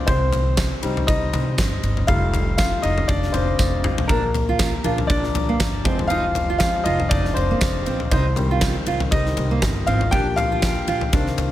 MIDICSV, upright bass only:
0, 0, Header, 1, 2, 480
1, 0, Start_track
1, 0, Key_signature, -3, "minor"
1, 0, Tempo, 502513
1, 72, Time_signature, 4, 2, 24, 8
1, 11001, End_track
2, 0, Start_track
2, 0, Title_t, "Upright bass"
2, 0, Program_c, 0, 32
2, 72, Note_on_c, 0, 36, 111
2, 655, Note_off_c, 0, 36, 0
2, 793, Note_on_c, 0, 36, 97
2, 989, Note_off_c, 0, 36, 0
2, 1035, Note_on_c, 0, 36, 95
2, 1230, Note_off_c, 0, 36, 0
2, 1271, Note_on_c, 0, 36, 102
2, 1468, Note_off_c, 0, 36, 0
2, 1513, Note_on_c, 0, 31, 92
2, 1709, Note_off_c, 0, 31, 0
2, 1752, Note_on_c, 0, 31, 97
2, 1949, Note_off_c, 0, 31, 0
2, 1990, Note_on_c, 0, 29, 104
2, 2574, Note_off_c, 0, 29, 0
2, 2705, Note_on_c, 0, 29, 92
2, 2904, Note_off_c, 0, 29, 0
2, 2952, Note_on_c, 0, 29, 104
2, 3148, Note_off_c, 0, 29, 0
2, 3189, Note_on_c, 0, 29, 90
2, 3387, Note_off_c, 0, 29, 0
2, 3431, Note_on_c, 0, 29, 87
2, 3628, Note_off_c, 0, 29, 0
2, 3668, Note_on_c, 0, 33, 91
2, 3866, Note_off_c, 0, 33, 0
2, 3909, Note_on_c, 0, 34, 108
2, 4493, Note_off_c, 0, 34, 0
2, 4626, Note_on_c, 0, 34, 98
2, 4825, Note_off_c, 0, 34, 0
2, 4870, Note_on_c, 0, 34, 95
2, 5067, Note_off_c, 0, 34, 0
2, 5104, Note_on_c, 0, 34, 91
2, 5304, Note_off_c, 0, 34, 0
2, 5352, Note_on_c, 0, 31, 98
2, 5591, Note_off_c, 0, 31, 0
2, 5591, Note_on_c, 0, 29, 105
2, 6291, Note_off_c, 0, 29, 0
2, 6547, Note_on_c, 0, 29, 95
2, 6745, Note_off_c, 0, 29, 0
2, 6792, Note_on_c, 0, 29, 103
2, 6988, Note_off_c, 0, 29, 0
2, 7027, Note_on_c, 0, 29, 92
2, 7225, Note_off_c, 0, 29, 0
2, 7273, Note_on_c, 0, 29, 90
2, 7469, Note_off_c, 0, 29, 0
2, 7509, Note_on_c, 0, 34, 96
2, 7707, Note_off_c, 0, 34, 0
2, 7750, Note_on_c, 0, 36, 111
2, 8334, Note_off_c, 0, 36, 0
2, 8471, Note_on_c, 0, 36, 95
2, 8668, Note_off_c, 0, 36, 0
2, 8711, Note_on_c, 0, 36, 104
2, 8908, Note_off_c, 0, 36, 0
2, 8951, Note_on_c, 0, 36, 96
2, 9148, Note_off_c, 0, 36, 0
2, 9193, Note_on_c, 0, 31, 102
2, 9389, Note_off_c, 0, 31, 0
2, 9431, Note_on_c, 0, 32, 97
2, 9628, Note_off_c, 0, 32, 0
2, 9672, Note_on_c, 0, 34, 107
2, 10256, Note_off_c, 0, 34, 0
2, 10393, Note_on_c, 0, 34, 93
2, 10590, Note_off_c, 0, 34, 0
2, 10634, Note_on_c, 0, 36, 99
2, 10831, Note_off_c, 0, 36, 0
2, 10870, Note_on_c, 0, 36, 94
2, 11001, Note_off_c, 0, 36, 0
2, 11001, End_track
0, 0, End_of_file